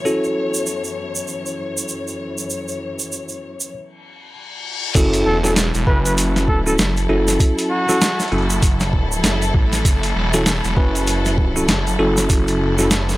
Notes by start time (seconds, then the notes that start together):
Already playing: F#2 E3 F#4 B4 C#5 E5
0.05 C#4 E4 F#4 A4, shaker
0.24 shaker
0.54 shaker
0.66 shaker
0.84 shaker
1.15 shaker
1.28 shaker
1.46 shaker
1.77 shaker
1.88 shaker
2.08 shaker
2.38 shaker
2.50 shaker
2.68 shaker
2.99 shaker
3.12 shaker
3.29 shaker
3.60 shaker
3.73 reverse cymbal
4.95 F#1 F#3 C#4 E4 F#4 A4, kick, closed hi-hat, crash, shaker
5.13 closed hi-hat, shaker
5.26 E1 A4
5.44 C#4 E4 F#4 A4, snare, shaker
5.56 snare, closed hi-hat, shaker
5.74 E1, closed hi-hat, shaker
5.87 F#1 C#4 E4 F#4 B4, kick
6.05 B4, closed hi-hat, shaker
6.18 closed hi-hat, shaker
6.36 snare, closed hi-hat, shaker
6.48 A4, kick
6.66 C#4 E4 F#4 A4, shaker
6.78 F#1, snare, closed hi-hat, shaker
6.97 closed hi-hat, shaker
7.09 F#1 C#4 E4 F#4 A4
7.28 snare, closed hi-hat, shaker
7.40 kick, closed hi-hat, shaker
7.58 closed hi-hat, shaker
7.71 F#4
7.89 C#4 E4 F#4 A4, snare, shaker
8.01 snare, closed hi-hat, shaker
8.20 snare, closed hi-hat, shaker
8.22 closed hi-hat
8.28 closed hi-hat
8.32 F#1 C#4 E4 F#4 A4, closed hi-hat
8.38 closed hi-hat
8.42 closed hi-hat
8.50 closed hi-hat, shaker
8.62 kick, closed hi-hat, shaker
8.80 snare, closed hi-hat, shaker
8.93 kick
9.12 shaker
9.24 F#1, snare, closed hi-hat, shaker
9.42 closed hi-hat, shaker
9.54 A1, kick
9.73 snare, closed hi-hat, shaker
9.85 F#1, kick, closed hi-hat, shaker
10.03 closed hi-hat, shaker
10.16 E1
10.33 C#4 E4 F#4 A4, snare, shaker
10.46 snare, closed hi-hat, shaker
10.64 E1, closed hi-hat, shaker
10.77 F#1 C#4 E4 F#4 B4, kick
10.95 closed hi-hat, shaker
11.07 closed hi-hat, shaker
11.25 snare, closed hi-hat, shaker
11.38 kick
11.56 C#4 E4 F#4 A4, shaker
11.68 F#1, snare, closed hi-hat, shaker
11.87 closed hi-hat, shaker
11.99 F#1 C#4 E4 F#4 A4
12.17 snare, closed hi-hat, shaker
12.30 F#1, kick, closed hi-hat, shaker
12.48 closed hi-hat, shaker
12.78 C#4 E4 F#4 A4, snare, shaker
12.91 snare, closed hi-hat, shaker
13.09 snare, closed hi-hat, shaker